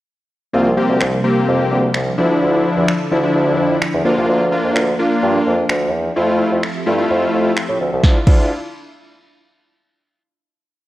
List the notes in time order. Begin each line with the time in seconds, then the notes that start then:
0.53 C2 C3 F3 G3 A#3 C4 D4 F4
0.77 A#3 C4 G4
0.89 D2
1.01 C2, finger snap
1.24 A#3 C4 G4
1.48 F2
1.71 D2
1.94 C2, finger snap
2.18 D2 D3 F3 D4 E4 A4
2.41 D2
2.76 E2
2.88 finger snap
3.11 D2 F3 D4 E4
3.23 F3 D4 E4
3.35 D2
3.58 F2
3.82 finger snap
3.94 E2
4.05 D2 A#3 D4 F4
4.17 C2
4.29 D2
4.52 A#3 D4 F4
4.64 F2
4.75 D2, finger snap
4.99 A#3 D4 F4
5.22 G2
5.46 F2
5.69 D2, finger snap
5.93 E2
6.16 F2 F3 A3 C4 E4 F4 G4 A4 E5
6.51 F2
6.63 finger snap
6.86 G2 A3 E4 F4
6.98 A3 E4 F4
7.10 F2
7.33 F2
7.57 finger snap
7.69 A2
7.80 D2
7.92 C2
8.04 D2 D3 D4 E4 F4 A4, kick, snare
8.27 D2 D4 E4 F4, kick, crash